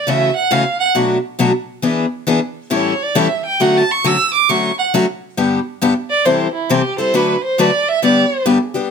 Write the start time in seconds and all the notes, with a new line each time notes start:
Already playing: D5
0.07 C#3 E3 A3 C#4 F#4 E5
0.36 F#5
0.51 C#3 E3 A3 C#4 F#4 F5
0.79 F#5
0.95 B2 F#3 A3 D4 F#4
1.39 B2 F#3 A3 D4 F#4
1.82 E3 B3 D4 G#4
2.27 E3 B3 D4 G#4
2.70 A2 E3 G3 C#4 E4 A4 C#5
3.02 D5
3.15 A2 E3 G3 C#4 E4 A4 E5
3.46 G5
3.60 D3 F#3 A3 C#4 F#4 F#5
3.77 A5
3.91 C#6
4.04 D3 F#3 A3 C#4 F#4 E6
4.34 D6
4.49 D3 F#3 A3 C#4 F#4 C#6
4.79 F#5
4.94 D3 F#3 A3 C#4 F#4
5.37 G2 D3 G3 B3 D4 G4
5.82 G2 D3 G3 B3 D4 G4
6.10 D5
6.25 C3 E3 G3 C4 E4 A4 C5
6.54 E4
6.70 C3 E3 G3 C4 E4 G4 A4
6.98 G3 C4 E4 A4 C5
7.14 D3 F#3 A3 D4 F#4 B4
7.44 C5
7.58 D3 F#3 A3 D4 F#4 B4 D5
7.88 E5
8.02 G2 D3 G3 B3 D4 G4 D5
8.46 G2 D3 G3 B3 D4 G4
8.74 G3 B3 D4 G4